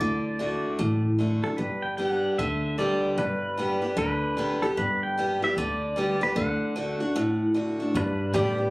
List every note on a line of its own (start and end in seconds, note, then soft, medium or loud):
0.00 0.56 D2 medium
0.00 0.38 D3 medium
0.00 1.02 D5 medium
0.39 0.78 D3 medium
0.39 0.78 A3 medium
0.39 0.78 D4 medium
0.39 0.79 F#4 medium
0.79 1.36 A1 medium
0.79 1.56 A2 medium
1.19 1.43 D3 medium
1.19 1.44 A3 medium
1.19 1.44 D4 medium
1.19 1.42 F#4 medium
1.43 1.59 D4 soft
1.43 1.58 F#4 soft
1.43 1.58 A4 medium
1.57 2.15 G1 medium
1.57 2.35 G2 medium
1.57 1.84 B4 medium
1.82 1.97 G5 medium
1.97 2.37 D3 medium
1.97 2.37 G3 medium
1.97 2.37 B3 medium
1.97 2.38 G4 medium
1.97 2.08 G5 medium
2.08 2.38 F#5 medium
2.38 2.95 D2 medium
2.38 2.77 D3 medium
2.38 2.80 E5 medium
2.78 3.17 D3 medium
2.78 3.17 G3 medium
2.78 3.17 B3 medium
2.78 3.18 G4 medium
2.78 3.20 D5 medium
3.17 3.74 G1 medium
3.17 3.95 G2 medium
3.17 3.97 B4 medium
3.57 3.82 D3 medium
3.57 3.82 G3 medium
3.57 3.83 B3 medium
3.57 3.81 G4 medium
3.82 3.98 B3 soft
3.82 3.97 G4 medium
3.96 4.53 D2 medium
3.96 4.36 D3 medium
3.96 4.65 B4 medium
4.37 4.61 D3 medium
4.37 4.62 G3 medium
4.37 4.62 B3 medium
4.37 4.61 G4 medium
4.62 4.78 B3 soft
4.62 4.77 G4 medium
4.62 4.67 A4 medium
4.77 5.34 G1 medium
4.77 5.54 G2 medium
4.77 5.03 B4 medium
5.03 5.43 G5 medium
5.18 5.41 D3 soft
5.18 5.42 G3 medium
5.18 5.42 B3 medium
5.18 5.41 G4 medium
5.42 5.57 B3 soft
5.42 5.56 G4 soft
5.42 5.58 E5 medium
5.57 6.13 D2 medium
5.57 5.95 D3 medium
5.57 6.22 D5 medium
5.96 6.20 D3 medium
5.96 6.21 G3 medium
5.96 6.21 B3 medium
5.96 6.20 G4 medium
6.21 6.36 B3 soft
6.21 6.35 G4 medium
6.21 6.37 B4 medium
6.36 6.92 D2 medium
6.36 6.74 D3 medium
6.36 7.52 F#5 medium
6.76 7.00 D3 medium
6.76 7.00 A3 medium
6.76 7.00 D4 medium
6.76 6.99 F#4 medium
7.00 7.16 D4 soft
7.00 7.15 F#4 soft
7.16 7.92 A2 medium
7.54 7.79 D3 medium
7.54 7.79 A3 medium
7.54 7.79 D4 medium
7.54 7.79 F#4 medium
7.80 7.95 D4 soft
7.80 7.94 F#4 medium
7.94 8.33 G2 medium
7.94 8.70 G2 medium
7.94 8.33 D4 medium
7.94 8.36 B4 medium
8.34 8.70 A2 medium
8.34 8.58 D3 medium
8.34 8.58 G3 loud
8.34 8.63 B3 medium
8.34 8.58 B3 loud
8.34 8.64 D4 medium
8.34 8.64 G4 medium
8.34 8.57 G4 loud
8.34 8.70 G4 medium
8.34 8.70 B4 medium
8.34 8.64 B4 medium
8.34 8.70 D5 loud
8.58 8.70 B3 soft
8.58 8.70 G4 medium